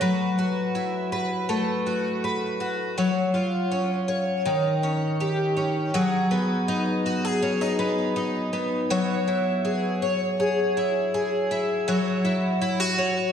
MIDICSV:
0, 0, Header, 1, 2, 480
1, 0, Start_track
1, 0, Tempo, 740741
1, 13, Time_signature, 4, 2, 24, 8
1, 8631, End_track
2, 0, Start_track
2, 0, Title_t, "Twelve-string acoustic guitar"
2, 0, Program_c, 0, 25
2, 0, Note_on_c, 0, 57, 62
2, 5, Note_on_c, 0, 54, 67
2, 10, Note_on_c, 0, 71, 55
2, 250, Note_on_c, 0, 66, 52
2, 486, Note_on_c, 0, 64, 52
2, 719, Note_off_c, 0, 71, 0
2, 727, Note_on_c, 0, 71, 59
2, 747, Note_off_c, 0, 57, 0
2, 964, Note_on_c, 0, 57, 58
2, 1201, Note_off_c, 0, 66, 0
2, 1208, Note_on_c, 0, 66, 47
2, 1444, Note_off_c, 0, 71, 0
2, 1452, Note_on_c, 0, 71, 53
2, 1679, Note_off_c, 0, 66, 0
2, 1687, Note_on_c, 0, 66, 49
2, 1921, Note_off_c, 0, 54, 0
2, 1929, Note_off_c, 0, 71, 0
2, 1929, Note_on_c, 0, 54, 70
2, 1932, Note_on_c, 0, 73, 55
2, 1977, Note_off_c, 0, 57, 0
2, 1977, Note_off_c, 0, 64, 0
2, 1978, Note_off_c, 0, 66, 0
2, 2164, Note_on_c, 0, 65, 47
2, 2407, Note_on_c, 0, 61, 51
2, 2637, Note_off_c, 0, 73, 0
2, 2644, Note_on_c, 0, 73, 60
2, 2884, Note_off_c, 0, 54, 0
2, 2887, Note_on_c, 0, 51, 70
2, 2937, Note_off_c, 0, 65, 0
2, 2937, Note_off_c, 0, 73, 0
2, 2938, Note_off_c, 0, 61, 0
2, 3131, Note_on_c, 0, 61, 48
2, 3373, Note_on_c, 0, 67, 55
2, 3599, Note_off_c, 0, 61, 0
2, 3607, Note_on_c, 0, 61, 46
2, 3847, Note_off_c, 0, 51, 0
2, 3850, Note_on_c, 0, 54, 80
2, 3851, Note_off_c, 0, 67, 0
2, 3854, Note_on_c, 0, 68, 67
2, 3898, Note_off_c, 0, 61, 0
2, 4088, Note_on_c, 0, 59, 59
2, 4330, Note_on_c, 0, 63, 61
2, 4572, Note_off_c, 0, 68, 0
2, 4574, Note_on_c, 0, 66, 65
2, 4695, Note_off_c, 0, 66, 0
2, 4695, Note_on_c, 0, 68, 56
2, 4808, Note_off_c, 0, 63, 0
2, 4810, Note_on_c, 0, 61, 61
2, 4932, Note_off_c, 0, 61, 0
2, 4932, Note_on_c, 0, 63, 54
2, 5044, Note_off_c, 0, 59, 0
2, 5047, Note_on_c, 0, 59, 60
2, 5280, Note_off_c, 0, 63, 0
2, 5287, Note_on_c, 0, 63, 63
2, 5524, Note_off_c, 0, 59, 0
2, 5526, Note_on_c, 0, 59, 55
2, 5762, Note_off_c, 0, 54, 0
2, 5769, Note_on_c, 0, 54, 78
2, 5772, Note_on_c, 0, 73, 63
2, 5818, Note_off_c, 0, 63, 0
2, 5822, Note_off_c, 0, 68, 0
2, 6010, Note_on_c, 0, 64, 55
2, 6251, Note_on_c, 0, 68, 62
2, 6492, Note_off_c, 0, 73, 0
2, 6494, Note_on_c, 0, 73, 68
2, 6514, Note_off_c, 0, 59, 0
2, 6730, Note_off_c, 0, 68, 0
2, 6738, Note_on_c, 0, 68, 60
2, 6976, Note_off_c, 0, 64, 0
2, 6979, Note_on_c, 0, 64, 56
2, 7213, Note_off_c, 0, 68, 0
2, 7221, Note_on_c, 0, 68, 61
2, 7455, Note_off_c, 0, 64, 0
2, 7458, Note_on_c, 0, 64, 57
2, 7694, Note_off_c, 0, 54, 0
2, 7697, Note_on_c, 0, 54, 78
2, 7699, Note_off_c, 0, 73, 0
2, 7701, Note_on_c, 0, 73, 65
2, 7745, Note_off_c, 0, 68, 0
2, 7933, Note_off_c, 0, 64, 0
2, 7936, Note_on_c, 0, 64, 61
2, 8174, Note_off_c, 0, 64, 0
2, 8174, Note_on_c, 0, 64, 66
2, 8293, Note_off_c, 0, 64, 0
2, 8293, Note_on_c, 0, 66, 54
2, 8410, Note_off_c, 0, 73, 0
2, 8413, Note_on_c, 0, 73, 67
2, 8631, Note_off_c, 0, 54, 0
2, 8631, Note_off_c, 0, 66, 0
2, 8631, Note_off_c, 0, 73, 0
2, 8631, End_track
0, 0, End_of_file